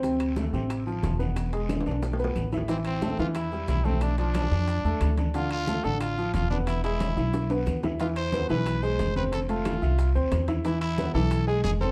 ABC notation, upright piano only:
X:1
M:4/4
L:1/8
Q:1/4=181
K:Ephr
V:1 name="Upright piano"
[C,C]2 [A,A] [C,C]2 [F,F]2 [B,B]- | [B,B] [^G,^G]2 [Dd]2 [B,B]2 [Ee] | [E,E]2 [A,A] [E,E]2 [G,G]2 [A,A]- | [A,A] [F,F]2 [Dd]2 [A,A]2 [Dd] |
[D,D]2 [A,A] [D,D]2 [F,F]2 [B,B]- | [B,B] [^G,^G]2 [Ee]2 [B,B]2 [Ee] | [E,E]2 [B,B] [E,E]2 [^G,^G]2 [Cc]- | [Cc] [A,A]2 [Fe]2 [Cc]2 [Ee] |
[E,E]2 [B,B] [E,E]2 [^G,^G]2 [Cc] |]